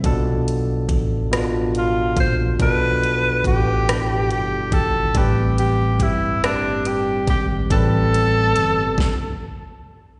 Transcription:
<<
  \new Staff \with { instrumentName = "Tenor saxophone" } { \time 6/8 \key a \minor \tempo 4. = 47 r2 f'8 c''8 | b'4 g'4 g'8 a'8 | g'8 g'8 e'8 d'8 g'8 g'8 | a'2 r4 | }
  \new Staff \with { instrumentName = "Tine electric piano" } { \time 6/8 \key a \minor <b, f d' a'>4 r8 <b, f d' f'>4 r8 | <b, f d' a'>4 r8 <b, f d' e'>4 r8 | <a, g c' b'>4 r8 <a, g c' g'>4 r8 | <a, g c' b'>4 r2 | }
  \new Staff \with { instrumentName = "Fingered electric bass" } { \clef bass \time 6/8 \key a \minor b,,4 a,,4. bes,,8 | b,,4 a,,4 g,,8 gis,,8 | a,,4 g,,4. gis,,8 | a,,4 g,,8 r4. | }
  \new DrumStaff \with { instrumentName = "Drums" } \drummode { \time 6/8 <hh bd>8 hh8 <hh bd>8 <hh ss>8 hh8 <hh bd>8 | <hh bd>8 hh8 <hh bd>8 <hh ss>8 hh8 <hh bd>8 | <hh bd>8 hh8 <hh bd>8 <hh ss>8 hh8 <hh bd>8 | <hh bd>8 hh8 hh8 <bd sn>4. | }
>>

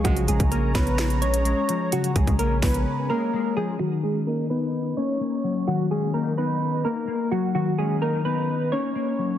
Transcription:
<<
  \new Staff \with { instrumentName = "Analog synth pad" } { \time 4/4 \key ees \minor \tempo 4 = 128 <aes' des'' bes''>1~ | <aes' des'' bes''>1 | r1 | r1 |
r1 | }
  \new Staff \with { instrumentName = "Synth keys" } { \time 4/4 \key ees \minor <ges ges'>8 <aes aes'>8 <bes bes'>8 <ces' ces''>4 <des' des''>4. | <ges ges'>8 <aes aes'>8 <bes bes'>8 <ces' ces''>4 <bes bes'>4 <aes aes'>8 | <ges ges'>8 <aes aes'>8 <bes bes'>8 <ces' ces''>4 <des' des''>4. | <ges ges'>8 <aes aes'>8 <bes bes'>8 <ces' ces''>4 <bes bes'>4 <ges ges'>8 |
<ges ges'>8 <aes aes'>8 <bes bes'>8 <ces' ces''>4 <des' des''>4. | }
  \new Staff \with { instrumentName = "Clean electric guitar" } { \time 4/4 \key ees \minor des8 aes8 des'8 des'4 aes8 aes8 f8 | des8 aes8 des'8 des'4 aes8 aes8 f8 | ees8 des'8 ees'8 ees'4 bes8 bes8 ges8 | ees8 des'8 ees'8 ees'4 bes8 bes8 ges8 |
ees8 des'8 ees'8 ees'4 bes8 bes8 ges8 | }
  \new Staff \with { instrumentName = "Brass ensemble" } { \clef bass \time 4/4 \key ees \minor <des f aes>4 r2. | r1 | r1 | r1 |
r1 | }
  \new Staff \with { instrumentName = "808-style bass" } { \clef bass \time 4/4 \key ees \minor bes,,8 bes,,16 bes,,8. bes,,4.~ bes,,16 r8. | r8 bes,,16 bes,,8. bes,,8 r2 | r1 | r1 |
r1 | }
  \new DrumStaff \with { instrumentName = "Drums" } \drummode { \time 4/4 <hh bd>16 hh16 hh16 <hh bd>16 hh8 <hc hh bd sn>16 hh16 <hc hh sn>16 hh16 hh16 hh16 hh8 hh8 | hh16 hh16 <hh bd>16 <hh bd>16 hh8 <hc hho bd sn>16 hh16 r4 r4 | r4 r4 r4 r4 | r4 r4 r4 r4 |
r4 r4 r4 r4 | }
>>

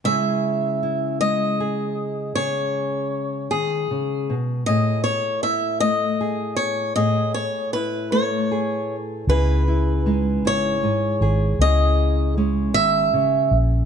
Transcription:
<<
  \new Staff \with { instrumentName = "Steel-string acoustic guitar" } { \time 6/8 \key cis \minor \tempo 4. = 52 e''4. dis''4. | cis''4. gis'4 r8 | dis''8 cis''8 e''8 dis''4 cis''8 | dis''8 cis''8 b'8 cis''4 r8 |
b'4. cis''4. | dis''4 r8 e''4 r8 | }
  \new Staff \with { instrumentName = "Nylon-string guitar" } { \time 6/8 \key cis \minor << { <gis cis' e' gis'>4 e'4 gis'4 | gis'2. | gis'4 e'4 gis'4 | gis'4 e'4 gis'4 |
<dis' e' gis'>8 e'8 dis'8 e'8 dis'8 gis'8 | <cis' e' gis'>4 cis'2 | } \\ { cis4. gis4. | cis4. dis8 cis8 b,8 | a,4. a4. | a,4. a4. |
cis4 gis4 gis,4 | cis4 gis8 dis8 cis8 r8 | } >> }
  \new Staff \with { instrumentName = "Fingered electric bass" } { \clef bass \time 6/8 \key cis \minor r2. | r2. | r2. | r2. |
cis,4. gis,,4 gis,,8 | cis,4. gis,,4 ais,,8 | }
>>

